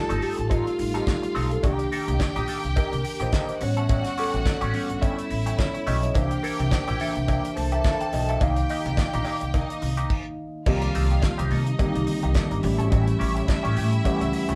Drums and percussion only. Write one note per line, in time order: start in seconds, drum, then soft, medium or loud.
0.10 closed hi-hat soft
0.22 open hi-hat medium
0.38 closed hi-hat soft
0.50 kick loud
0.50 closed hi-hat medium
0.50 cowbell medium
0.67 closed hi-hat soft
0.79 open hi-hat medium
0.95 closed hi-hat soft
1.07 kick loud
1.07 snare loud
1.07 clap medium
1.07 closed hi-hat soft
1.07 cowbell medium
1.23 closed hi-hat soft
1.35 open hi-hat medium
1.51 closed hi-hat soft
1.63 kick loud
1.63 closed hi-hat medium
1.63 cowbell medium
1.79 closed hi-hat soft
1.92 open hi-hat medium
2.08 closed hi-hat soft
2.19 kick loud
2.19 snare loud
2.19 clap medium
2.19 closed hi-hat medium
2.19 cowbell medium
2.36 closed hi-hat soft
2.48 open hi-hat medium
2.64 closed hi-hat soft
2.76 kick loud
2.76 closed hi-hat medium
2.76 cowbell medium
2.93 closed hi-hat soft
3.05 open hi-hat medium
3.20 closed hi-hat soft
3.32 kick loud
3.32 snare loud
3.32 clap medium
3.32 closed hi-hat medium
3.32 cowbell medium
3.49 closed hi-hat soft
3.61 open hi-hat medium
3.77 closed hi-hat soft
3.89 kick loud
3.89 closed hi-hat medium
3.89 cowbell medium
4.05 snare soft
4.05 closed hi-hat soft
4.18 open hi-hat medium
4.34 closed hi-hat soft
4.46 kick loud
4.46 snare loud
4.46 clap medium
4.46 closed hi-hat medium
4.46 cowbell medium
4.61 closed hi-hat soft
4.74 open hi-hat medium
4.90 closed hi-hat soft
5.02 kick loud
5.02 closed hi-hat medium
5.02 cowbell medium
5.19 closed hi-hat soft
5.31 open hi-hat medium
5.46 closed hi-hat medium
5.58 kick loud
5.58 snare loud
5.58 clap medium
5.58 closed hi-hat soft
5.58 cowbell medium
5.75 closed hi-hat soft
5.87 open hi-hat medium
6.03 closed hi-hat soft
6.14 kick loud
6.14 closed hi-hat medium
6.14 cowbell medium
6.31 closed hi-hat soft
6.44 open hi-hat medium
6.60 closed hi-hat soft
6.71 kick loud
6.71 snare loud
6.71 clap loud
6.71 closed hi-hat medium
6.71 cowbell loud
6.88 closed hi-hat soft
7.00 open hi-hat medium
7.15 closed hi-hat soft
7.28 kick loud
7.28 closed hi-hat medium
7.28 cowbell medium
7.45 closed hi-hat soft
7.57 open hi-hat medium
7.72 closed hi-hat soft
7.84 kick loud
7.84 snare loud
7.84 clap medium
7.84 closed hi-hat soft
7.84 cowbell medium
8.01 closed hi-hat soft
8.13 open hi-hat medium
8.29 closed hi-hat soft
8.41 kick loud
8.41 closed hi-hat medium
8.41 cowbell medium
8.56 closed hi-hat soft
8.69 open hi-hat medium
8.86 closed hi-hat soft
8.97 kick loud
8.97 snare loud
8.97 clap loud
8.97 closed hi-hat medium
8.97 cowbell medium
9.13 closed hi-hat soft
9.25 open hi-hat medium
9.25 cowbell medium
9.41 closed hi-hat soft
9.54 kick loud
9.54 closed hi-hat medium
9.54 cowbell medium
9.70 closed hi-hat medium
9.82 open hi-hat medium
9.97 closed hi-hat soft
10.10 kick loud
10.10 crash medium
10.66 kick loud
10.66 crash loud
10.66 cowbell medium
10.82 closed hi-hat soft
10.95 open hi-hat medium
11.10 closed hi-hat soft
11.22 kick loud
11.22 snare loud
11.22 clap medium
11.22 closed hi-hat medium
11.22 cowbell medium
11.39 closed hi-hat soft
11.51 open hi-hat medium
11.67 closed hi-hat soft
11.79 kick loud
11.79 closed hi-hat medium
11.79 cowbell medium
11.95 closed hi-hat soft
12.07 open hi-hat medium
12.22 closed hi-hat soft
12.34 kick loud
12.34 snare loud
12.34 clap medium
12.34 closed hi-hat medium
12.34 cowbell medium
12.51 closed hi-hat soft
12.63 open hi-hat medium
12.80 closed hi-hat soft
12.92 kick loud
12.92 closed hi-hat medium
12.92 cowbell medium
13.08 closed hi-hat medium
13.21 open hi-hat medium
13.37 closed hi-hat soft
13.48 kick loud
13.48 snare loud
13.48 clap medium
13.48 closed hi-hat medium
13.48 cowbell medium
13.65 closed hi-hat soft
13.77 open hi-hat medium
13.93 closed hi-hat soft
14.05 kick loud
14.05 closed hi-hat medium
14.05 cowbell medium
14.21 closed hi-hat medium
14.33 open hi-hat medium
14.49 closed hi-hat medium